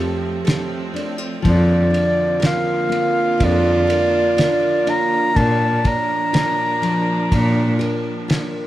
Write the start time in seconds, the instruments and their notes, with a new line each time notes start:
Already playing: string section F3 A3 C4, nylon-string guitar F3 C4 F4 A4, french horn G4
0.45 nylon-string guitar A4, snare, ride
0.94 nylon-string guitar D4, ride
1.18 nylon-string guitar F4
1.42 cello F2, string section D3 A#3, nylon-string guitar F3, french horn F4, kick, ride
1.50 clarinet D5
1.90 nylon-string guitar D4, ride
2.40 nylon-string guitar A#4, snare, ride
2.46 clarinet F5
2.89 nylon-string guitar A#3, ride
3.38 cello F2, nylon-string guitar D4, string section D4, kick, ride
3.44 clarinet D5
3.87 nylon-string guitar A#4, ride
4.37 nylon-string guitar A#4, snare, ride
4.87 nylon-string guitar D4, clarinet A#5, ride
5.34 nylon-string guitar A#2, cello A#2, string section F3 D4, french horn D4, clarinet A5, kick, ride
5.84 nylon-string guitar D4, clarinet A#5, kick, ride
6.33 nylon-string guitar F4, snare, ride
6.82 nylon-string guitar F3, ride
7.32 cello A#2, nylon-string guitar D4, kick, ride
7.79 nylon-string guitar A#4, ride
8.28 nylon-string guitar F4, snare, ride